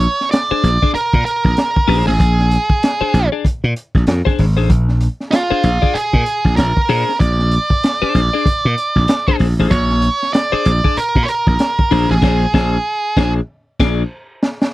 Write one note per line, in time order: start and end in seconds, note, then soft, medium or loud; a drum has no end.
0.00 0.28 C#5 loud
0.00 closed hi-hat medium
0.21 snare soft
0.31 0.90 D5 loud
0.31 snare loud
0.31 closed hi-hat medium
0.51 0.69 D4 medium
0.51 0.69 G#4 medium
0.51 0.69 C5 medium
0.51 muted slap bass stroke soft
0.63 0.77 A#1 medium
0.63 closed hi-hat medium
0.82 0.95 D4 soft
0.82 0.95 G#4 soft
0.82 0.95 D5 medium
0.82 kick medium
0.95 1.24 A#4 medium
0.95 muted slap bass stroke soft
0.95 closed hi-hat medium
1.13 1.23 A#2 medium
1.13 kick medium
1.25 2.07 A#4 loud
1.25 closed hi-hat medium
1.45 1.54 A#1 medium
1.45 kick medium
1.45 snare soft
1.57 snare loud
1.57 closed hi-hat medium
1.76 kick loud
1.88 2.02 A#1 medium
1.88 2.10 D4 medium
1.88 2.11 G#4 loud
1.88 2.11 C5 loud
1.88 open hi-hat medium
2.07 2.20 A1 medium
2.07 3.28 G#4 medium
2.07 snare soft
2.20 2.56 A#1 loud
2.20 kick loud
2.20 closed hi-hat medium
2.39 snare soft
2.51 closed hi-hat medium
2.70 kick loud
2.83 snare loud
2.83 closed hi-hat loud
3.01 3.19 D4 medium
3.01 3.19 G#4 medium
3.01 3.19 C5 medium
3.01 muted slap bass stroke soft
3.14 3.27 A#1 loud
3.14 snare soft
3.14 closed hi-hat medium
3.32 3.45 D4 soft
3.32 3.45 G#4 medium
3.32 3.45 D5 medium
3.45 muted slap bass stroke soft
3.45 kick medium
3.45 closed hi-hat medium
3.64 3.73 A#2 medium
3.76 closed hi-hat medium
3.95 4.04 A#1 medium
3.95 kick medium
3.95 snare soft
4.07 4.21 F2 medium
4.07 snare loud
4.07 closed hi-hat medium
4.25 4.44 D4 medium
4.25 4.44 G#4 medium
4.25 4.44 C5 medium
4.25 kick loud
4.25 snare soft
4.38 4.57 G#1 medium
4.38 snare soft
4.38 open hi-hat medium
4.57 4.70 A1 medium
4.57 4.70 D4 soft
4.57 4.70 G#4 medium
4.57 4.70 C5 medium
4.70 5.07 A#1 loud
4.70 kick loud
4.70 closed hi-hat medium
4.89 snare soft
5.01 closed hi-hat medium
5.20 snare soft
5.31 5.96 F4 medium
5.31 snare loud
5.31 closed hi-hat medium
5.50 5.69 D4 medium
5.50 5.69 G#4 medium
5.50 5.69 C5 medium
5.50 muted slap bass stroke soft
5.63 5.77 A#1 loud
5.63 closed hi-hat medium
5.82 5.96 D4 soft
5.82 5.95 G#4 medium
5.82 5.95 D5 medium
5.82 kick medium
5.94 6.56 G#4 medium
5.94 muted slap bass stroke soft
5.94 closed hi-hat medium
6.13 6.23 A#2 loud
6.13 kick medium
6.26 closed hi-hat medium
6.45 6.54 A#1 medium
6.45 kick medium
6.45 snare soft
6.56 6.72 A#1 medium
6.56 7.16 A#4 medium
6.56 snare loud
6.56 closed hi-hat medium
6.77 kick loud
6.89 7.03 A#2 medium
6.89 7.11 D4 medium
6.89 7.12 G#4 loud
6.89 7.12 C5 medium
6.89 open hi-hat medium
7.09 snare soft
7.20 7.57 A#1 loud
7.20 9.36 D5 loud
7.20 kick loud
7.20 closed hi-hat medium
7.39 snare soft
7.51 closed hi-hat medium
7.70 kick medium
7.83 snare loud
7.83 closed hi-hat medium
8.02 8.20 D4 medium
8.02 8.20 G#4 medium
8.02 8.20 C5 medium
8.02 muted slap bass stroke soft
8.15 8.28 A#1 medium
8.15 snare soft
8.15 closed hi-hat medium
8.33 8.47 D4 soft
8.33 8.46 G#4 medium
8.33 8.46 D5 medium
8.46 muted slap bass stroke soft
8.46 kick loud
8.46 closed hi-hat medium
8.65 8.74 A#2 loud
8.78 closed hi-hat medium
8.96 9.05 A#1 medium
8.96 kick medium
8.96 snare soft
9.08 snare loud
9.08 closed hi-hat loud
9.28 9.47 D4 medium
9.28 9.46 G#4 medium
9.28 9.46 C5 medium
9.28 kick loud
9.28 snare soft
9.39 9.54 A#1 medium
9.39 snare soft
9.39 open hi-hat medium
9.59 9.68 A1 medium
9.59 9.72 D4 soft
9.59 9.72 G#4 medium
9.59 9.72 C5 medium
9.71 10.08 A#1 loud
9.71 10.33 C#5 loud
9.71 kick loud
9.71 closed hi-hat medium
9.90 snare soft
10.02 closed hi-hat medium
10.23 snare soft
10.33 10.98 D5 loud
10.33 snare loud
10.33 closed hi-hat medium
10.52 10.71 D4 medium
10.52 10.71 G#4 medium
10.52 10.71 C5 medium
10.52 muted slap bass stroke soft
10.65 10.80 A#1 medium
10.65 closed hi-hat medium
10.84 10.97 D4 soft
10.84 10.97 G#4 soft
10.84 10.97 D5 medium
10.84 kick medium
10.97 11.24 A#4 medium
10.97 muted slap bass stroke soft
10.97 closed hi-hat medium
11.15 11.25 A#2 loud
11.15 kick medium
11.23 11.28 C#5 medium
11.28 12.11 A#4 loud
11.28 closed hi-hat medium
11.47 11.56 A#1 medium
11.47 kick loud
11.47 snare soft
11.59 snare loud
11.59 closed hi-hat loud
11.79 kick loud
11.91 12.05 A#1 medium
11.91 12.14 D4 medium
11.91 12.14 G#4 medium
11.91 12.14 C5 medium
11.91 open hi-hat medium
12.10 12.22 A1 medium
12.10 13.32 G#4 medium
12.10 snare soft
12.22 12.45 A#1 medium
12.22 12.45 D4 medium
12.22 12.45 G#4 loud
12.22 12.45 C5 loud
12.22 kick loud
12.22 snare loud
12.22 crash medium
12.54 12.76 A#1 medium
12.54 12.77 D4 medium
12.54 12.77 G#4 medium
12.54 12.76 C5 medium
12.54 kick loud
12.54 snare loud
13.17 13.39 A#1 loud
13.17 13.40 D4 loud
13.17 13.40 G#4 loud
13.17 13.39 C5 loud
13.17 kick loud
13.17 snare loud
13.80 14.02 A#1 loud
13.80 14.03 D4 loud
13.80 14.02 G#4 loud
13.80 14.02 D5 loud
13.80 kick loud
13.80 snare medium
13.80 crash medium
14.43 snare medium
14.62 snare medium